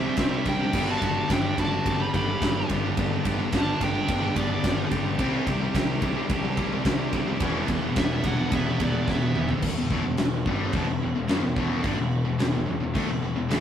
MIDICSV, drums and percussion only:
0, 0, Header, 1, 2, 480
1, 0, Start_track
1, 0, Key_signature, 1, "minor"
1, 0, Tempo, 555556
1, 640, Time_signature, 4, 2, 24, 8
1, 11751, End_track
2, 0, Start_track
2, 0, Title_t, "Drums"
2, 143, Note_on_c, 9, 51, 107
2, 152, Note_on_c, 9, 38, 109
2, 153, Note_on_c, 9, 36, 108
2, 230, Note_off_c, 9, 51, 0
2, 238, Note_off_c, 9, 38, 0
2, 239, Note_off_c, 9, 36, 0
2, 393, Note_on_c, 9, 51, 83
2, 395, Note_on_c, 9, 36, 90
2, 479, Note_off_c, 9, 51, 0
2, 482, Note_off_c, 9, 36, 0
2, 631, Note_on_c, 9, 49, 114
2, 635, Note_on_c, 9, 36, 122
2, 717, Note_off_c, 9, 49, 0
2, 721, Note_off_c, 9, 36, 0
2, 879, Note_on_c, 9, 36, 88
2, 880, Note_on_c, 9, 51, 76
2, 965, Note_off_c, 9, 36, 0
2, 966, Note_off_c, 9, 51, 0
2, 1122, Note_on_c, 9, 36, 116
2, 1122, Note_on_c, 9, 51, 101
2, 1131, Note_on_c, 9, 38, 121
2, 1208, Note_off_c, 9, 51, 0
2, 1209, Note_off_c, 9, 36, 0
2, 1217, Note_off_c, 9, 38, 0
2, 1363, Note_on_c, 9, 36, 86
2, 1365, Note_on_c, 9, 51, 78
2, 1450, Note_off_c, 9, 36, 0
2, 1452, Note_off_c, 9, 51, 0
2, 1606, Note_on_c, 9, 36, 127
2, 1608, Note_on_c, 9, 51, 101
2, 1692, Note_off_c, 9, 36, 0
2, 1694, Note_off_c, 9, 51, 0
2, 1847, Note_on_c, 9, 36, 91
2, 1850, Note_on_c, 9, 51, 66
2, 1934, Note_off_c, 9, 36, 0
2, 1937, Note_off_c, 9, 51, 0
2, 2088, Note_on_c, 9, 36, 110
2, 2089, Note_on_c, 9, 51, 101
2, 2098, Note_on_c, 9, 38, 121
2, 2175, Note_off_c, 9, 36, 0
2, 2176, Note_off_c, 9, 51, 0
2, 2185, Note_off_c, 9, 38, 0
2, 2328, Note_on_c, 9, 51, 78
2, 2329, Note_on_c, 9, 36, 92
2, 2415, Note_off_c, 9, 36, 0
2, 2415, Note_off_c, 9, 51, 0
2, 2567, Note_on_c, 9, 51, 100
2, 2570, Note_on_c, 9, 36, 115
2, 2653, Note_off_c, 9, 51, 0
2, 2657, Note_off_c, 9, 36, 0
2, 2809, Note_on_c, 9, 51, 88
2, 2811, Note_on_c, 9, 36, 97
2, 2896, Note_off_c, 9, 51, 0
2, 2897, Note_off_c, 9, 36, 0
2, 3045, Note_on_c, 9, 51, 109
2, 3049, Note_on_c, 9, 36, 115
2, 3053, Note_on_c, 9, 38, 111
2, 3131, Note_off_c, 9, 51, 0
2, 3135, Note_off_c, 9, 36, 0
2, 3140, Note_off_c, 9, 38, 0
2, 3291, Note_on_c, 9, 36, 88
2, 3292, Note_on_c, 9, 51, 84
2, 3377, Note_off_c, 9, 36, 0
2, 3378, Note_off_c, 9, 51, 0
2, 3528, Note_on_c, 9, 51, 119
2, 3529, Note_on_c, 9, 36, 123
2, 3614, Note_off_c, 9, 51, 0
2, 3616, Note_off_c, 9, 36, 0
2, 3768, Note_on_c, 9, 36, 89
2, 3769, Note_on_c, 9, 51, 80
2, 3855, Note_off_c, 9, 36, 0
2, 3855, Note_off_c, 9, 51, 0
2, 4008, Note_on_c, 9, 36, 121
2, 4008, Note_on_c, 9, 51, 120
2, 4016, Note_on_c, 9, 38, 106
2, 4094, Note_off_c, 9, 36, 0
2, 4094, Note_off_c, 9, 51, 0
2, 4103, Note_off_c, 9, 38, 0
2, 4245, Note_on_c, 9, 51, 88
2, 4246, Note_on_c, 9, 36, 91
2, 4332, Note_off_c, 9, 36, 0
2, 4332, Note_off_c, 9, 51, 0
2, 4482, Note_on_c, 9, 51, 108
2, 4484, Note_on_c, 9, 36, 121
2, 4569, Note_off_c, 9, 51, 0
2, 4571, Note_off_c, 9, 36, 0
2, 4724, Note_on_c, 9, 36, 94
2, 4726, Note_on_c, 9, 51, 82
2, 4810, Note_off_c, 9, 36, 0
2, 4812, Note_off_c, 9, 51, 0
2, 4965, Note_on_c, 9, 36, 111
2, 4970, Note_on_c, 9, 51, 111
2, 4978, Note_on_c, 9, 38, 122
2, 5051, Note_off_c, 9, 36, 0
2, 5056, Note_off_c, 9, 51, 0
2, 5065, Note_off_c, 9, 38, 0
2, 5199, Note_on_c, 9, 51, 75
2, 5202, Note_on_c, 9, 36, 94
2, 5285, Note_off_c, 9, 51, 0
2, 5288, Note_off_c, 9, 36, 0
2, 5439, Note_on_c, 9, 51, 105
2, 5440, Note_on_c, 9, 36, 127
2, 5526, Note_off_c, 9, 51, 0
2, 5527, Note_off_c, 9, 36, 0
2, 5678, Note_on_c, 9, 51, 72
2, 5680, Note_on_c, 9, 36, 88
2, 5764, Note_off_c, 9, 51, 0
2, 5767, Note_off_c, 9, 36, 0
2, 5918, Note_on_c, 9, 51, 99
2, 5919, Note_on_c, 9, 36, 116
2, 5927, Note_on_c, 9, 38, 122
2, 6004, Note_off_c, 9, 51, 0
2, 6006, Note_off_c, 9, 36, 0
2, 6013, Note_off_c, 9, 38, 0
2, 6158, Note_on_c, 9, 51, 74
2, 6159, Note_on_c, 9, 36, 88
2, 6244, Note_off_c, 9, 51, 0
2, 6246, Note_off_c, 9, 36, 0
2, 6395, Note_on_c, 9, 51, 105
2, 6398, Note_on_c, 9, 36, 125
2, 6481, Note_off_c, 9, 51, 0
2, 6485, Note_off_c, 9, 36, 0
2, 6636, Note_on_c, 9, 51, 80
2, 6639, Note_on_c, 9, 36, 101
2, 6723, Note_off_c, 9, 51, 0
2, 6725, Note_off_c, 9, 36, 0
2, 6877, Note_on_c, 9, 51, 101
2, 6881, Note_on_c, 9, 36, 119
2, 6886, Note_on_c, 9, 38, 121
2, 6964, Note_off_c, 9, 51, 0
2, 6968, Note_off_c, 9, 36, 0
2, 6972, Note_off_c, 9, 38, 0
2, 7115, Note_on_c, 9, 51, 82
2, 7121, Note_on_c, 9, 36, 86
2, 7202, Note_off_c, 9, 51, 0
2, 7207, Note_off_c, 9, 36, 0
2, 7358, Note_on_c, 9, 51, 118
2, 7361, Note_on_c, 9, 36, 124
2, 7445, Note_off_c, 9, 51, 0
2, 7448, Note_off_c, 9, 36, 0
2, 7602, Note_on_c, 9, 51, 81
2, 7603, Note_on_c, 9, 36, 89
2, 7688, Note_off_c, 9, 51, 0
2, 7689, Note_off_c, 9, 36, 0
2, 7843, Note_on_c, 9, 36, 119
2, 7853, Note_on_c, 9, 38, 63
2, 7929, Note_off_c, 9, 36, 0
2, 7940, Note_off_c, 9, 38, 0
2, 7965, Note_on_c, 9, 48, 68
2, 8052, Note_off_c, 9, 48, 0
2, 8083, Note_on_c, 9, 45, 92
2, 8170, Note_off_c, 9, 45, 0
2, 8196, Note_on_c, 9, 43, 99
2, 8283, Note_off_c, 9, 43, 0
2, 8314, Note_on_c, 9, 49, 124
2, 8314, Note_on_c, 9, 57, 62
2, 8319, Note_on_c, 9, 36, 95
2, 8401, Note_off_c, 9, 49, 0
2, 8401, Note_off_c, 9, 57, 0
2, 8405, Note_off_c, 9, 36, 0
2, 8558, Note_on_c, 9, 36, 110
2, 8644, Note_off_c, 9, 36, 0
2, 8790, Note_on_c, 9, 57, 67
2, 8798, Note_on_c, 9, 38, 116
2, 8876, Note_off_c, 9, 57, 0
2, 8885, Note_off_c, 9, 38, 0
2, 9036, Note_on_c, 9, 36, 113
2, 9123, Note_off_c, 9, 36, 0
2, 9268, Note_on_c, 9, 57, 71
2, 9275, Note_on_c, 9, 36, 120
2, 9354, Note_off_c, 9, 57, 0
2, 9361, Note_off_c, 9, 36, 0
2, 9749, Note_on_c, 9, 57, 63
2, 9758, Note_on_c, 9, 38, 110
2, 9836, Note_off_c, 9, 57, 0
2, 9844, Note_off_c, 9, 38, 0
2, 9992, Note_on_c, 9, 36, 115
2, 10078, Note_off_c, 9, 36, 0
2, 10228, Note_on_c, 9, 57, 67
2, 10231, Note_on_c, 9, 36, 114
2, 10314, Note_off_c, 9, 57, 0
2, 10317, Note_off_c, 9, 36, 0
2, 10708, Note_on_c, 9, 57, 63
2, 10717, Note_on_c, 9, 38, 120
2, 10794, Note_off_c, 9, 57, 0
2, 10803, Note_off_c, 9, 38, 0
2, 11190, Note_on_c, 9, 36, 112
2, 11191, Note_on_c, 9, 57, 72
2, 11276, Note_off_c, 9, 36, 0
2, 11277, Note_off_c, 9, 57, 0
2, 11668, Note_on_c, 9, 57, 74
2, 11677, Note_on_c, 9, 38, 120
2, 11751, Note_off_c, 9, 38, 0
2, 11751, Note_off_c, 9, 57, 0
2, 11751, End_track
0, 0, End_of_file